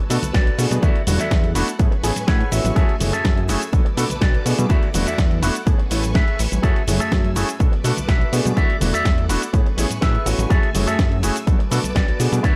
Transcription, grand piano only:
0.10 0.16 A3 loud
0.10 0.16 B3 medium
0.10 0.16 D4 medium
0.10 0.17 F#4 medium
0.10 0.17 A4 loud
0.58 0.80 A3 medium
0.58 0.80 B3 medium
0.58 0.80 D4 medium
0.58 0.80 F#4 medium
0.58 0.80 G#4 medium
0.82 0.93 A3 loud
0.82 0.93 B3 medium
0.82 0.93 D4 medium
0.82 0.93 E4 medium
0.82 0.93 F#4 loud
1.07 1.17 A3 medium
1.07 1.17 B3 medium
1.07 1.17 D4 medium
1.07 1.17 E4 medium
1.07 1.17 F#4 medium
1.55 1.65 A3 medium
1.55 1.65 B3 medium
1.55 1.65 D4 medium
1.55 1.66 E4 medium
1.55 1.66 F#4 loud
1.79 1.90 A3 medium
1.79 1.90 B3 medium
1.79 1.90 C#4 medium
1.79 1.90 E4 medium
1.79 1.90 G#4 medium
2.03 2.10 A3 medium
2.03 2.10 B3 medium
2.03 2.10 C#4 medium
2.03 2.10 E4 medium
2.03 2.10 G#4 loud
2.52 2.73 A3 medium
2.52 2.73 B3 medium
2.52 2.74 C#4 medium
2.52 2.74 E4 medium
2.52 2.74 F#4 medium
2.76 2.86 A3 loud
2.76 2.86 C#4 medium
2.76 2.86 E4 medium
2.76 2.86 F#4 medium
2.76 2.87 G#4 loud
3.00 3.10 A3 medium
3.00 3.11 C#4 medium
3.00 3.11 E4 medium
3.00 3.11 F#4 medium
3.00 3.11 G#4 medium
3.48 3.59 A3 loud
3.48 3.59 C#4 medium
3.48 3.59 E4 medium
3.48 3.59 F#4 medium
3.48 3.59 G#4 loud
3.73 3.83 A3 medium
3.73 3.83 B3 medium
3.73 3.83 D4 medium
3.73 3.83 F#4 medium
3.73 3.83 A4 medium
3.97 4.03 A3 loud
3.97 4.04 B3 medium
3.97 4.04 D4 medium
3.97 4.04 F#4 medium
3.97 4.04 A4 loud
4.45 4.67 A3 medium
4.45 4.67 B3 medium
4.45 4.67 D4 medium
4.45 4.67 F#4 medium
4.45 4.67 G#4 medium
4.69 4.80 A3 loud
4.69 4.80 B3 medium
4.69 4.80 D4 medium
4.69 4.80 E4 medium
4.69 4.80 F#4 loud
4.94 5.04 A3 medium
4.94 5.04 B3 medium
4.94 5.04 D4 medium
4.94 5.04 E4 medium
4.94 5.04 F#4 medium
5.42 5.52 A3 medium
5.42 5.52 B3 medium
5.42 5.53 D4 medium
5.42 5.53 E4 medium
5.42 5.53 F#4 loud
5.66 5.77 A3 medium
5.66 5.77 B3 medium
5.66 5.77 C#4 medium
5.66 5.77 E4 medium
5.66 5.77 G#4 medium
5.91 6.01 A3 medium
5.91 6.01 B3 medium
5.91 6.01 C#4 medium
5.91 6.01 E4 medium
5.91 6.01 B4 medium
6.63 6.73 A3 loud
6.63 6.73 C#4 medium
6.63 6.74 E4 medium
6.63 6.74 F#4 medium
6.63 6.74 G#4 loud
6.87 6.98 A3 medium
6.87 6.98 C#4 medium
6.87 6.98 E4 medium
6.87 6.98 F#4 medium
6.87 6.98 G#4 medium
7.36 7.46 A3 medium
7.36 7.46 C#4 medium
7.36 7.46 E4 medium
7.36 7.46 F#4 medium
7.36 7.46 G#4 loud
7.60 7.70 A3 medium
7.60 7.70 B3 medium
7.60 7.70 D4 medium
7.60 7.70 F#4 medium
7.60 7.71 A4 medium
7.84 7.91 A3 loud
7.84 7.91 B3 medium
7.84 7.91 D4 medium
7.84 7.91 F#4 medium
7.84 7.91 A4 loud
8.32 8.54 A3 medium
8.32 8.54 B3 medium
8.32 8.54 D4 medium
8.32 8.54 F#4 medium
8.32 8.54 G#4 medium
8.56 8.67 A3 loud
8.56 8.67 B3 medium
8.56 8.67 D4 medium
8.56 8.67 E4 medium
8.56 8.67 F#4 loud
8.81 8.91 A3 medium
8.81 8.91 B3 medium
8.81 8.91 D4 medium
8.81 8.91 E4 medium
8.81 8.91 F#4 medium
9.29 9.39 A3 medium
9.29 9.39 B3 medium
9.29 9.40 D4 medium
9.29 9.40 E4 medium
9.29 9.40 F#4 loud
9.53 9.64 A3 medium
9.53 9.64 B3 medium
9.53 9.64 C#4 medium
9.53 9.64 E4 medium
9.53 9.64 G#4 medium
9.77 9.84 A3 loud
9.77 9.84 B3 medium
9.77 9.84 C#4 medium
9.77 9.84 E4 medium
9.77 9.84 G#4 loud
10.26 10.47 A3 medium
10.26 10.48 B3 medium
10.26 10.48 C#4 medium
10.26 10.48 E4 medium
10.26 10.48 F#4 medium
10.50 10.60 A3 loud
10.50 10.60 C#4 medium
10.50 10.61 E4 medium
10.50 10.61 F#4 medium
10.50 10.61 G#4 loud
10.74 10.85 A3 medium
10.74 10.85 C#4 medium
10.74 10.85 E4 medium
10.74 10.85 F#4 medium
10.74 10.85 G#4 medium
11.23 11.33 A3 medium
11.23 11.33 C#4 medium
11.23 11.33 E4 medium
11.23 11.33 F#4 medium
11.23 11.33 G#4 loud
11.47 11.57 A3 medium
11.47 11.57 B3 medium
11.47 11.57 D4 medium
11.47 11.57 F#4 medium
11.47 11.58 A4 medium
11.71 11.78 A3 loud
11.71 11.78 B3 medium
11.71 11.78 D4 medium
11.71 11.78 F#4 medium
11.71 11.78 A4 loud
12.19 12.41 A3 medium
12.19 12.41 B3 medium
12.19 12.41 D4 medium
12.19 12.41 F#4 medium
12.19 12.41 G#4 medium
12.44 12.54 A3 loud
12.44 12.54 B3 medium
12.44 12.54 D4 medium
12.44 12.54 E4 loud
12.44 12.54 F#4 loud

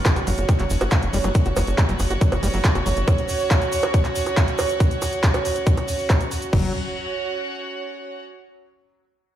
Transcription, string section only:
0.00 6.52 C#4 medium
0.00 6.53 F#4 medium
0.00 6.53 C#5 medium
0.00 6.53 F#5 medium
6.53 8.22 C#4 medium
6.59 8.22 F#4 medium
6.66 8.22 C#5 medium
6.72 8.22 F#5 medium

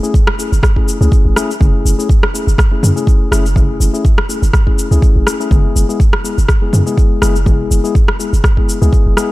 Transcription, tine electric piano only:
0.03 0.14 A3 medium
0.03 0.14 C#4 medium
0.03 0.14 E4 medium
0.03 0.14 G#4 medium
0.39 0.52 A3 medium
0.39 0.52 C#4 medium
0.39 0.52 E4 medium
0.39 0.52 G#4 medium
0.76 0.98 A3 medium
0.76 0.98 C#4 medium
0.76 0.98 E4 medium
0.76 0.98 G#4 medium
1.01 1.34 A3 medium
1.01 1.34 C#4 medium
1.01 1.34 E4 medium
1.01 1.34 G#4 medium
1.36 1.50 A3 medium
1.36 1.50 C#4 medium
1.36 1.50 E4 medium
1.36 1.50 G#4 medium
1.61 1.95 A3 medium
1.61 1.95 C#4 medium
1.61 1.96 E4 medium
1.61 1.95 G#4 medium
1.99 2.10 A3 medium
1.99 2.10 C#4 medium
1.99 2.09 E4 medium
1.99 2.10 G#4 medium
2.34 2.47 A3 medium
2.34 2.47 C#4 medium
2.34 2.47 E4 medium
2.34 2.47 G#4 medium
2.72 2.93 A3 medium
2.72 2.93 C#4 medium
2.72 2.93 E4 medium
2.72 2.93 G#4 medium
2.96 3.29 A3 medium
2.96 3.29 C#4 medium
2.96 3.29 E4 medium
2.96 3.29 G#4 medium
3.31 3.45 A3 medium
3.31 3.45 C#4 medium
3.31 3.45 E4 medium
3.31 3.45 G#4 medium
3.56 3.91 A3 medium
3.56 3.91 C#4 medium
3.56 3.91 E4 medium
3.56 3.91 G#4 medium
3.93 4.04 A3 medium
3.93 4.04 C#4 medium
3.93 4.05 E4 medium
3.93 4.04 G#4 medium
4.29 4.42 A3 medium
4.29 4.42 C#4 medium
4.29 4.42 E4 medium
4.29 4.42 G#4 medium
4.67 4.88 A3 medium
4.67 4.88 C#4 medium
4.67 4.88 E4 medium
4.67 4.88 G#4 medium
4.91 5.37 A3 medium
4.91 5.37 C#4 medium
4.91 5.37 E4 medium
4.91 5.37 G#4 medium
5.40 5.49 A3 medium
5.40 5.49 C#4 medium
5.40 5.49 E4 medium
5.40 5.49 G#4 medium
5.51 5.86 G#3 medium
5.51 5.86 B3 medium
5.51 5.86 E4 medium
5.51 5.86 G#4 medium
5.89 6.00 G#3 medium
5.89 6.00 B3 medium
5.89 6.00 E4 medium
5.89 6.00 G#4 medium
6.24 6.37 G#3 medium
6.24 6.37 B3 medium
6.24 6.37 E4 medium
6.24 6.37 G#4 medium
6.62 6.83 G#3 medium
6.62 6.83 B3 medium
6.62 6.83 E4 medium
6.62 6.83 G#4 medium
6.86 7.19 G#3 medium
6.86 7.19 B3 medium
6.86 7.19 E4 medium
6.86 7.19 G#4 medium
7.22 7.35 G#3 medium
7.22 7.35 B3 medium
7.22 7.35 E4 medium
7.22 7.35 G#4 medium
7.46 7.81 G#3 medium
7.46 7.81 B3 medium
7.46 7.81 E4 medium
7.46 7.81 G#4 medium
7.84 7.95 G#3 medium
7.84 7.95 B3 medium
7.84 7.95 E4 medium
7.84 7.95 G#4 medium
8.19 8.33 G#3 medium
8.19 8.33 B3 medium
8.19 8.33 E4 medium
8.19 8.33 G#4 medium
8.57 8.78 G#3 medium
8.57 8.79 B3 medium
8.57 8.78 E4 medium
8.57 8.78 G#4 medium
8.81 9.14 G#3 medium
8.81 9.14 B3 medium
8.81 9.14 E4 medium
8.81 9.14 G#4 medium
9.17 9.30 G#3 medium
9.17 9.30 B3 medium
9.17 9.30 E4 medium
9.17 9.30 G#4 medium

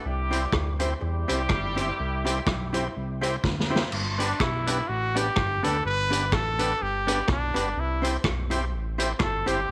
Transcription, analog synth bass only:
0.05 0.46 C2 loud
0.53 0.94 D2 loud
1.02 1.25 E2 loud
1.30 1.48 C2 medium
1.50 1.91 G1 medium
2.00 2.40 C2 loud
2.47 2.88 B1 medium
2.97 3.37 C2 medium
3.45 3.85 D2 medium
3.92 4.33 G1 loud
4.41 4.81 B1 medium
4.89 5.30 A1 loud
5.37 5.60 G1 medium
5.65 5.82 D2 loud
5.85 6.34 G1 loud
6.33 6.74 A1 loud
6.81 7.22 G1 medium
7.29 7.52 B1 loud
7.56 7.74 G1 medium
7.77 8.17 C2 loud
8.24 8.74 B1 loud
8.73 9.13 A1 loud
9.20 9.43 G1 loud
9.48 9.65 G1 loud

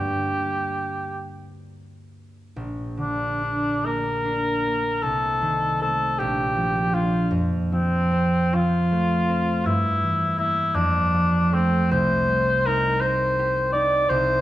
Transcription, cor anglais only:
0.00 1.22 G4 soft
2.98 3.87 D4 medium
3.86 5.04 A#4 medium
5.03 5.81 A4 medium
5.82 6.20 A4 medium
6.19 6.96 G4 medium
6.94 7.33 F4 medium
7.72 8.56 C4 medium
8.54 9.67 F4 medium
9.66 10.38 E4 medium
10.39 10.76 E4 medium
10.75 11.56 D4 medium
11.54 11.91 C4 medium
11.92 12.68 C5 medium
12.66 13.02 A#4 medium
13.01 13.72 C5 medium
13.73 14.11 D5 medium
14.09 14.41 C5 medium

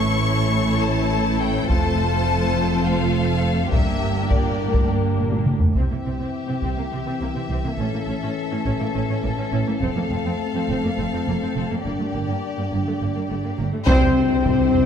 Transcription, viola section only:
0.00 3.69 A3 medium
0.00 1.66 E4 medium
1.71 3.73 F4 medium
3.73 5.52 A#3 soft
3.73 5.52 D4 soft
5.76 5.82 C4 soft
5.91 5.96 A#3 soft
6.06 6.11 C4 soft
6.19 6.25 C4 soft
6.48 6.53 C4 soft
6.63 6.69 C4 soft
6.78 6.83 A#3 soft
6.92 6.98 C4 soft
7.06 7.12 C4 soft
7.22 7.27 A#3 soft
7.35 7.41 C4 soft
7.51 7.56 C4 soft
7.66 7.71 A#3 soft
7.79 7.85 C#4 soft
7.94 7.99 A#3 soft
8.09 8.14 C#4 soft
8.23 8.28 C#4 medium
8.52 8.57 C#4 soft
8.66 8.72 C#4 medium
8.80 8.86 A#3 soft
8.95 9.00 C#4 soft
9.09 9.15 C#4 medium
9.23 9.29 A#3 soft
9.38 9.44 C#4 soft
9.52 9.58 C#4 medium
9.67 9.73 A#3 soft
9.82 9.88 C4 medium
9.96 10.02 A#3 soft
10.11 10.17 C4 soft
10.26 10.32 C4 medium
10.55 10.61 C4 soft
10.69 10.75 C4 medium
10.83 10.89 A#3 soft
10.98 11.04 C4 soft
11.13 11.19 C4 soft
11.28 11.34 A#3 soft
11.42 11.48 C4 soft
11.56 11.62 C4 soft
11.71 11.76 A#3 soft
11.84 11.90 A#3 soft
11.99 12.05 A3 soft
12.13 12.19 A#3 soft
12.28 12.34 A#3 soft
12.57 12.63 A#3 soft
12.71 12.77 A#3 soft
12.87 12.92 A3 soft
13.01 13.07 A#3 soft
13.15 13.21 A#3 soft
13.30 13.36 A3 soft
13.44 13.50 A#3 soft
13.58 13.64 A#3 soft
13.73 13.79 A3 soft
13.88 14.86 C4 medium

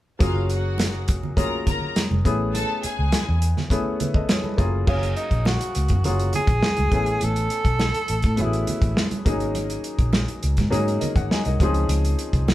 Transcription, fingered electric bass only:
0.21 1.09 F#1 medium
1.09 1.77 F1 medium
2.11 2.26 F1 medium
2.26 2.63 A1 medium
2.84 muted fingered electric bass stroke soft
2.99 3.11 C#2 medium
3.29 3.53 E2 medium
4.58 4.84 F#1 medium
4.88 5.13 F#1 medium
5.31 5.57 A#1 medium
5.76 5.88 C#2 medium
5.90 6.03 F#2 medium
6.05 6.30 F#1 medium
6.48 6.61 A#1 medium
6.79 6.91 C#2 medium
6.92 7.17 A1 medium
7.23 7.48 A1 medium
7.65 7.91 B1 medium
8.10 8.22 A1 medium
8.24 8.40 A2 medium
8.39 8.64 A1 medium
8.82 8.95 A1 medium
9.26 9.77 G#1 medium
9.99 10.24 A#1 medium
10.44 10.56 C#2 medium
10.58 10.71 G#2 medium
10.72 10.97 G#2 medium
11.16 11.29 G#1 medium
11.46 11.58 C2 medium
11.60 11.86 C#2 medium
11.88 12.14 C#2 medium
12.33 12.54 C2 medium

